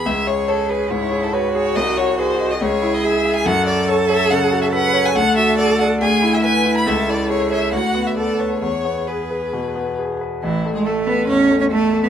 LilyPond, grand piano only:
\new Staff \with { instrumentName = "Grand piano" } { \time 4/4 \key cis \minor \tempo 4 = 140 cis,8 gis'8 cis''8 gis'8 gis,8 gis'8 cis''8 gis'8 | bis,,8 fis'8 gis'8 dis''8 cis,8 e'8 gis'8 e''8 | \key a \major fis,8 fis'8 a'8 cis''8 cis8 fis'8 a'8 cis''8 | d,8 fis'8 a'8 d''8 d,8 e'8 b'8 e'8 |
cis,8 e'8 a'8 cis''8 d,8 b8 a'8 b'8 | e,8 b8 gis'8 b'8 b,8 b8 gis'8 b'8 | a,,8 a8 a'8 a8 e,8 a8 a'8 a8 | }